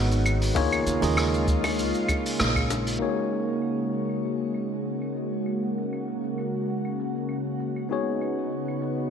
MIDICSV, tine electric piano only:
0, 0, Header, 1, 2, 480
1, 0, Start_track
1, 0, Tempo, 612245
1, 436, Time_signature, 4, 2, 24, 8
1, 7134, End_track
2, 0, Start_track
2, 0, Title_t, "Tine electric piano"
2, 0, Program_c, 0, 4
2, 0, Control_c, 0, 64, 127
2, 0, Note_on_c, 0, 59, 74
2, 0, Note_on_c, 0, 63, 75
2, 0, Note_on_c, 0, 66, 67
2, 0, Note_on_c, 0, 68, 73
2, 0, Note_on_c, 0, 73, 111
2, 0, Note_on_c, 0, 75, 84
2, 402, Note_off_c, 0, 59, 0
2, 405, Note_off_c, 0, 63, 0
2, 408, Note_off_c, 0, 66, 0
2, 412, Note_off_c, 0, 68, 0
2, 415, Note_off_c, 0, 75, 0
2, 430, Note_on_c, 0, 58, 99
2, 433, Note_on_c, 0, 63, 86
2, 438, Note_on_c, 0, 65, 88
2, 439, Note_on_c, 0, 68, 83
2, 444, Note_off_c, 0, 73, 0
2, 444, Control_c, 0, 64, 0
2, 444, Note_on_c, 0, 73, 104
2, 593, Control_c, 0, 64, 127
2, 770, Note_off_c, 0, 58, 0
2, 772, Note_off_c, 0, 63, 0
2, 774, Note_off_c, 0, 65, 0
2, 775, Note_off_c, 0, 68, 0
2, 777, Note_off_c, 0, 73, 0
2, 792, Note_on_c, 0, 58, 79
2, 797, Note_on_c, 0, 63, 72
2, 806, Note_on_c, 0, 65, 73
2, 812, Note_on_c, 0, 68, 70
2, 818, Note_on_c, 0, 75, 90
2, 2323, Note_off_c, 0, 58, 0
2, 2326, Note_off_c, 0, 63, 0
2, 2330, Note_off_c, 0, 65, 0
2, 2333, Note_off_c, 0, 68, 0
2, 2336, Note_off_c, 0, 75, 0
2, 2343, Note_on_c, 0, 58, 66
2, 2350, Note_on_c, 0, 63, 57
2, 2357, Note_on_c, 0, 66, 58
2, 2365, Note_on_c, 0, 68, 57
2, 2367, Control_c, 0, 64, 0
2, 2370, Note_on_c, 0, 73, 72
2, 2519, Control_c, 0, 64, 127
2, 6163, Note_off_c, 0, 58, 0
2, 6166, Note_off_c, 0, 63, 0
2, 6170, Note_off_c, 0, 66, 0
2, 6174, Note_off_c, 0, 68, 0
2, 6176, Note_off_c, 0, 73, 0
2, 6186, Note_on_c, 0, 59, 63
2, 6192, Note_on_c, 0, 63, 59
2, 6200, Note_on_c, 0, 66, 58
2, 6206, Control_c, 0, 64, 0
2, 6206, Note_on_c, 0, 68, 63
2, 6214, Note_on_c, 0, 73, 73
2, 6346, Control_c, 0, 64, 127
2, 7134, Note_off_c, 0, 59, 0
2, 7134, Note_off_c, 0, 63, 0
2, 7134, Note_off_c, 0, 66, 0
2, 7134, Note_off_c, 0, 68, 0
2, 7134, Note_off_c, 0, 73, 0
2, 7134, End_track
0, 0, End_of_file